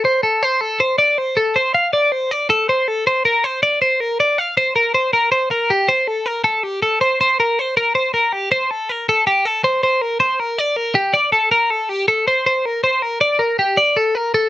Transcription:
0.05 0.23 C5 medium
0.23 0.43 A4 medium
0.43 0.61 C5 medium
0.61 0.80 A4 medium
0.80 0.98 C5 medium
0.98 1.18 D5 medium
1.18 1.37 C5 medium
1.37 1.56 A4 medium
1.56 1.74 C5 medium
1.75 1.93 F5 medium
1.93 2.12 D5 medium
2.12 2.31 C5 medium
2.31 2.49 D5 medium
2.50 2.69 A4 medium
2.69 2.88 C5 medium
2.88 3.07 A4 medium
3.07 3.25 C5 medium
3.25 3.44 A#4 medium
3.44 3.62 C5 medium
3.63 3.81 D5 medium
3.82 4.00 C5 medium
4.00 4.20 A#4 medium
4.20 4.38 D5 medium
4.38 4.57 F5 medium
4.57 4.75 C5 medium
4.76 4.94 A#4 medium
4.94 5.13 C5 medium
5.13 5.31 A#4 medium
5.32 5.51 C5 medium
5.51 5.70 A#4 medium
5.70 5.89 G4 medium
5.89 6.08 C5 medium
6.08 6.26 A4 medium
6.26 6.44 A#4 medium
6.44 6.63 A4 medium
6.63 6.82 G4 medium
6.83 7.01 A4 medium
7.01 7.20 C5 medium
7.21 7.39 C5 medium
7.40 7.59 A#4 medium
7.59 7.77 C5 medium
7.77 7.95 A#4 medium
7.95 8.13 C5 medium
8.14 8.33 A#4 medium
8.33 8.51 G4 medium
8.52 8.71 C5 medium
8.71 8.89 A4 medium
8.89 9.08 A#4 medium
9.09 9.27 A4 medium
9.27 9.45 G4 medium
9.45 9.64 A4 medium
9.64 9.82 C5 medium
9.83 10.02 C5 medium
10.02 10.20 A#4 medium
10.20 10.40 C5 medium
10.40 10.59 A#4 medium
10.59 10.76 D5 medium
10.76 10.96 A#4 medium
10.95 11.14 G4 medium
11.14 11.32 D5 medium
11.32 11.51 A4 medium
11.51 11.70 A#4 medium
11.70 11.89 A4 medium
11.89 12.08 G4 medium
12.08 12.27 A4 medium
12.28 12.45 C5 medium
12.46 12.66 C5 medium
12.66 12.83 A#4 medium
12.84 13.02 C5 medium
13.02 13.21 A#4 medium
13.21 13.40 D5 medium
13.39 13.58 A#4 medium
13.59 13.78 G4 medium
13.77 13.96 D5 medium
13.97 14.15 A4 medium
14.15 14.34 A#4 medium
14.34 14.49 A4 medium

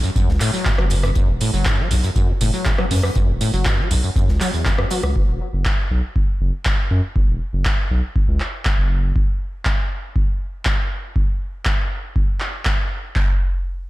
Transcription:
0.03 0.10 F#2 medium
0.03 tambourine soft
0.16 0.30 F#2 loud
0.16 kick loud
0.16 closed hi-hat medium
0.16 tambourine soft
0.28 0.39 C#2 loud
0.28 0.32 E2 medium
0.28 snare medium
0.40 0.51 A2 loud
0.40 clap medium
0.40 closed hi-hat medium
0.40 open hi-hat loud
0.40 tambourine medium
0.53 0.67 F#3 medium
0.53 snare soft
0.53 tambourine soft
0.65 0.73 F#2 medium
0.65 kick loud
0.65 snare loud
0.65 clap loud
0.65 closed hi-hat medium
0.65 tambourine soft
0.78 1.12 F#1 medium
0.78 0.85 F#3 loud
0.78 cross-stick medium
0.90 0.95 F#2 medium
0.90 closed hi-hat medium
0.90 open hi-hat loud
0.90 tambourine medium
1.03 1.10 F#2 medium
1.03 cross-stick medium
1.03 closed hi-hat soft
1.03 tambourine soft
1.15 1.26 F#1 loud
1.15 1.30 F#2 loud
1.15 kick loud
1.15 closed hi-hat medium
1.15 tambourine soft
1.28 1.39 E1 loud
1.28 1.32 E2 medium
1.41 1.51 A2 loud
1.41 closed hi-hat medium
1.41 open hi-hat loud
1.41 tambourine medium
1.53 1.64 F#1 medium
1.53 1.67 F#3 medium
1.53 snare soft
1.53 tambourine soft
1.65 1.80 F#2 medium
1.65 kick loud
1.65 snare loud
1.65 clap loud
1.65 closed hi-hat medium
1.65 tambourine soft
1.78 1.89 F#3 medium
1.91 2.01 B1 loud
1.91 1.95 F#2 medium
1.91 closed hi-hat medium
1.91 open hi-hat loud
1.91 tambourine medium
2.03 2.10 F#2 medium
2.03 closed hi-hat soft
2.03 tambourine soft
2.16 2.30 F#2 loud
2.16 kick loud
2.16 closed hi-hat medium
2.16 tambourine soft
2.29 2.33 E2 medium
2.41 2.51 F#1 medium
2.41 2.51 A2 loud
2.41 closed hi-hat medium
2.41 open hi-hat loud
2.41 tambourine medium
2.53 2.67 F#3 medium
2.53 snare soft
2.53 tambourine soft
2.65 2.73 F#2 medium
2.65 kick loud
2.65 snare loud
2.65 clap loud
2.65 closed hi-hat medium
2.65 tambourine soft
2.78 2.85 F#3 loud
2.78 cross-stick medium
2.91 3.01 F#2 medium
2.91 2.95 F#2 medium
2.91 open hi-hat loud
2.91 open hi-hat medium
2.91 tambourine medium
3.03 3.10 F#2 medium
3.03 cross-stick medium
3.03 tambourine soft
3.15 3.26 F#1 medium
3.15 3.30 F#2 loud
3.15 kick loud
3.15 closed hi-hat medium
3.15 tambourine soft
3.28 3.39 E1 medium
3.28 3.32 E2 medium
3.41 3.51 A2 loud
3.41 closed hi-hat medium
3.41 open hi-hat loud
3.41 tambourine medium
3.53 3.64 F#1 medium
3.53 3.67 F#3 medium
3.53 tambourine soft
3.65 3.80 F#2 medium
3.65 kick loud
3.65 snare loud
3.65 clap loud
3.65 closed hi-hat medium
3.65 tambourine soft
3.78 3.89 F#3 medium
3.91 4.01 B1 loud
3.91 3.95 F#2 medium
3.91 closed hi-hat medium
3.91 open hi-hat loud
3.91 tambourine medium
4.03 4.10 F#2 medium
4.03 tambourine soft
4.16 4.30 F#2 loud
4.16 kick loud
4.16 closed hi-hat medium
4.16 tambourine soft
4.28 4.39 C#2 medium
4.28 4.32 E2 medium
4.28 snare medium
4.40 4.51 F#3 loud
4.40 clap medium
4.40 closed hi-hat medium
4.40 open hi-hat loud
4.40 tambourine medium
4.53 4.67 E2 medium
4.53 snare soft
4.53 tambourine soft
4.65 4.73 F#2 medium
4.65 kick loud
4.65 snare loud
4.65 clap loud
4.65 closed hi-hat medium
4.65 tambourine soft
4.78 4.85 F#2 medium
4.78 cross-stick medium
4.91 5.01 F#3 loud
4.91 closed hi-hat medium
4.91 open hi-hat loud
4.91 tambourine medium
5.03 5.14 C#2 loud
5.03 5.10 F#3 medium
5.03 cross-stick medium
5.03 closed hi-hat soft
5.03 tambourine soft
5.16 5.26 F#1 medium
5.16 kick loud
5.28 5.39 E1 medium
5.53 5.64 F#1 medium
5.65 kick loud
5.65 clap loud
5.91 6.01 B1 medium
6.16 kick loud
6.41 6.51 F#1 medium
6.65 kick loud
6.65 clap loud
6.91 7.01 F#2 medium
7.16 7.26 F#1 medium
7.16 kick loud
7.28 7.39 E1 loud
7.53 7.64 F#1 medium
7.65 kick loud
7.65 clap loud
7.91 8.01 B1 loud
8.16 kick loud
8.28 8.39 C#2 medium
8.40 clap medium
8.65 kick loud
8.65 clap loud
8.78 9.12 F#1 medium
9.16 kick loud
9.65 kick loud
9.65 clap loud
10.16 kick loud
10.65 kick loud
10.65 clap loud
11.16 kick loud
11.65 kick loud
11.65 clap loud
12.16 kick loud
12.40 clap medium
12.65 kick loud
12.65 clap loud
13.16 kick loud
13.16 clap medium

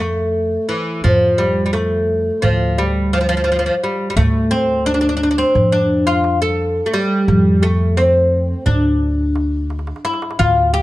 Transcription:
0.00 0.56 F2 medium
0.00 0.71 A3 medium
0.00 darbuka tek medium
0.69 1.03 E3 medium
0.69 darbuka ka soft
1.04 2.29 F2 medium
1.04 1.40 F3 medium
1.04 darbuka dum medium
1.38 1.65 G3 medium
1.38 darbuka tek medium
1.66 1.73 G3 soft
1.73 2.45 A3 medium
1.73 darbuka tek medium
2.42 3.68 D2 medium
2.42 2.79 F3 medium
2.42 darbuka dum medium
2.78 3.10 G3 medium
3.13 3.20 F3 medium
3.13 darbuka tek medium
3.21 3.28 F3 medium
3.29 3.36 F3 medium
3.37 3.43 F3 soft
3.44 3.50 F3 medium
3.52 3.58 F3 medium
3.59 3.65 F3 medium
3.66 3.74 F3 medium
3.83 4.09 G3 medium
3.83 darbuka ka soft
4.10 4.16 G3 medium
4.16 5.41 D2 medium
4.16 4.52 A3 medium
4.16 darbuka dum medium
4.51 4.86 C4 medium
4.51 darbuka tek medium
4.86 4.93 D4 medium
4.86 darbuka tek medium
4.94 5.00 D4 medium
5.01 5.08 D4 medium
5.09 5.16 D4 medium
5.17 5.22 D4 medium
5.23 5.30 D4 medium
5.31 5.38 D4 medium
5.38 5.72 C4 medium
5.55 6.79 F2 medium
5.55 darbuka dum medium
5.72 6.06 D4 medium
6.07 6.41 F4 medium
6.24 darbuka tek medium
6.42 6.88 A4 medium
6.86 6.93 A3 medium
6.93 7.65 G3 medium
6.93 darbuka ka soft
7.28 8.52 F2 medium
7.28 darbuka dum medium
7.62 7.97 A3 medium
7.62 darbuka tek medium
7.97 8.69 C4 medium
7.97 darbuka tek medium
8.66 9.91 D2 medium
8.66 10.04 D4 medium
8.66 darbuka dum medium
9.01 darbuka ka soft
9.36 darbuka tek medium
9.70 darbuka tek soft
9.79 darbuka ka medium
9.87 darbuka tek medium
9.96 darbuka ka medium
10.05 10.39 E4 medium
10.05 darbuka tek medium
10.14 darbuka ka medium
10.22 darbuka tek medium
10.31 darbuka ka medium
10.39 10.82 D2 medium
10.39 10.73 F4 medium
10.39 darbuka dum medium
10.74 10.82 G4 medium
10.74 darbuka tek medium

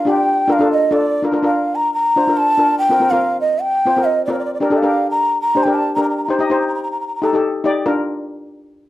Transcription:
0.00 0.11 F5 medium
0.05 0.31 D4 medium
0.05 0.32 F4 medium
0.05 0.32 G4 medium
0.10 0.54 G5 loud
0.48 0.55 D4 medium
0.48 0.55 F4 medium
0.48 0.56 A#4 medium
0.53 0.71 F5 medium
0.59 0.78 D4 medium
0.59 0.79 F4 medium
0.59 0.79 A4 medium
0.72 0.94 D#5 loud
0.91 1.10 D4 medium
0.91 1.10 F4 medium
0.91 1.11 A4 medium
0.91 1.22 D5 loud
1.23 1.29 D4 medium
1.23 1.29 F4 medium
1.23 1.30 A#4 medium
1.32 1.39 D4 medium
1.32 1.40 F4 medium
1.32 1.40 A#4 medium
1.43 1.88 D4 medium
1.43 1.88 F4 medium
1.43 1.88 A#4 medium
1.43 1.77 F5 medium
1.75 1.93 A#5 medium
1.94 2.38 A#5 loud
2.16 2.24 D4 medium
2.16 2.24 F4 medium
2.16 2.24 C5 medium
2.27 2.47 D4 medium
2.27 2.47 F4 medium
2.27 2.48 A#4 medium
2.37 2.78 A5 loud
2.57 2.78 D4 medium
2.57 2.78 F4 medium
2.57 2.78 A#4 medium
2.79 3.12 G5 loud
2.89 2.97 C4 medium
2.89 2.97 F4 medium
2.89 2.98 A#4 medium
3.00 3.08 C4 medium
3.00 3.08 F4 medium
3.00 3.09 A#4 medium
3.10 3.56 C4 medium
3.10 3.57 F4 medium
3.10 3.57 A#4 medium
3.10 3.40 F5 medium
3.41 3.63 D#5 medium
3.61 4.06 G5 medium
3.85 3.93 C4 medium
3.85 3.93 F4 medium
3.85 3.94 C5 medium
3.96 4.16 C4 medium
3.96 4.16 F4 medium
3.96 4.17 A#4 medium
4.04 4.25 D#5 medium
4.26 4.47 C4 medium
4.26 4.48 F4 medium
4.26 4.32 D5 medium
4.30 4.48 A#4 medium
4.30 4.38 D5 medium
4.39 4.45 D5 medium
4.45 4.53 D5 medium
4.54 4.60 D5 medium
4.60 4.67 D4 medium
4.60 4.67 G4 medium
4.60 4.68 A#4 medium
4.60 4.81 D5 medium
4.70 4.77 D4 medium
4.70 4.78 G4 medium
4.70 4.78 A4 medium
4.79 5.26 D4 medium
4.79 5.27 G4 medium
4.79 5.10 F5 medium
4.84 5.27 A#4 medium
5.11 5.41 A#5 loud
5.42 5.65 A#5 medium
5.55 5.62 D4 medium
5.55 5.62 G4 medium
5.55 5.63 C5 medium
5.63 5.85 D4 medium
5.63 5.85 G4 medium
5.63 5.76 G5 medium
5.67 5.86 A#4 medium
5.74 5.94 A5 medium
5.95 6.16 D4 medium
5.95 6.17 G4 medium
5.95 6.17 A#4 medium
5.95 6.03 A#5 medium
6.03 6.09 A#5 medium
6.09 6.17 A#5 medium
6.17 6.24 A#5 medium
6.24 6.30 A#5 medium
6.28 6.35 D#4 medium
6.28 6.36 G4 medium
6.28 6.36 C5 medium
6.28 6.37 A#5 medium
6.37 6.46 D#4 medium
6.37 6.46 G4 medium
6.37 6.47 D#5 medium
6.37 6.45 A#5 medium
6.46 6.52 A#5 medium
6.50 6.95 D#4 medium
6.50 6.95 G4 medium
6.50 6.95 C5 medium
6.50 6.59 A#5 medium
6.60 6.67 A#5 medium
6.68 6.74 A#5 medium
6.75 6.82 A#5 medium
6.83 6.91 A#5 medium
6.92 7.00 A#5 medium
7.01 7.07 A#5 medium
7.07 7.15 A#5 medium
7.15 7.23 A#5 medium
7.22 7.30 D#4 medium
7.22 7.30 G4 medium
7.22 7.31 A4 medium
7.22 7.31 A#5 medium
7.33 7.53 D#4 medium
7.33 7.54 G4 medium
7.33 7.54 A4 medium
7.64 7.84 D#4 medium
7.64 7.85 G4 medium
7.64 7.85 D5 medium
7.86 8.06 D4 medium
7.86 8.06 F4 medium
7.86 8.06 A#4 medium

